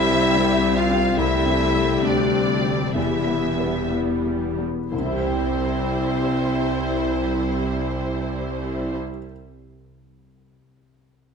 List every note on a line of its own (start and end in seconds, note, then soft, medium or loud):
0.00 1.13 C2 medium
0.00 1.15 C2 medium
0.00 1.15 C2 soft
0.00 1.17 C3 medium
0.00 1.15 G3 medium
0.00 1.16 G3 medium
0.00 0.25 C4 soft
0.00 1.15 C4 medium
0.00 2.95 C4 soft
0.00 0.74 E4 medium
0.00 1.17 G4 medium
0.00 0.35 C5 soft
0.00 0.76 E5 medium
0.00 0.77 E5 medium
0.09 1.74 G3 soft
0.09 0.52 C5 soft
0.36 0.79 C4 soft
0.36 0.89 C5 soft
0.63 1.06 G4 soft
0.63 2.33 G4 soft
0.77 1.20 F4 medium
0.77 1.18 F5 medium
0.89 1.17 C4 soft
1.17 2.01 C2 soft
1.17 2.02 C2 soft
1.17 2.02 C2 medium
1.17 3.00 C3 soft
1.17 2.93 G3 medium
1.17 2.79 A3 medium
1.17 2.93 C4 medium
1.17 2.04 E4 medium
1.17 2.79 G4 medium
1.17 2.02 E5 medium
1.17 2.03 E5 medium
1.45 1.92 C4 soft
1.74 5.65 G3 soft
1.74 2.21 A4 soft
2.03 2.95 D2 soft
2.03 2.52 C4 soft
2.03 2.62 D4 medium
2.03 2.64 A4 soft
2.03 2.97 D5 soft
2.33 2.83 G4 soft
2.33 4.24 G4 soft
2.65 2.96 C4 soft
2.65 3.00 A4 soft
2.95 4.63 E1 soft
2.95 4.88 E2 soft
2.95 4.63 E2 soft
2.95 4.96 E3 soft
2.95 4.63 G3 soft
2.95 4.66 B3 soft
2.95 4.51 B3 soft
2.95 3.89 E4 soft
2.95 4.48 G4 soft
2.95 3.91 E5 soft
2.95 3.92 E5 soft
3.27 3.80 B3 soft
3.27 3.92 B4 soft
3.60 5.05 E4 soft
3.60 4.12 B4 soft
3.92 4.45 B3 soft
3.92 4.58 B4 soft
4.25 4.79 G4 soft
4.25 5.12 G4 soft
4.58 4.92 B3 soft
4.58 4.96 B4 soft
4.91 8.96 C2 soft
4.91 8.96 C3 soft
4.91 8.96 G3 soft
4.91 8.95 C4 medium
4.91 8.97 C4 soft
4.91 8.96 E4 soft
4.91 8.97 E4 soft
4.91 8.97 C5 soft
4.98 9.03 C3 soft
4.98 9.03 C4 soft
5.06 9.10 E4 soft
5.12 9.17 G4 soft
5.20 9.24 C5 soft
5.27 9.31 G5 soft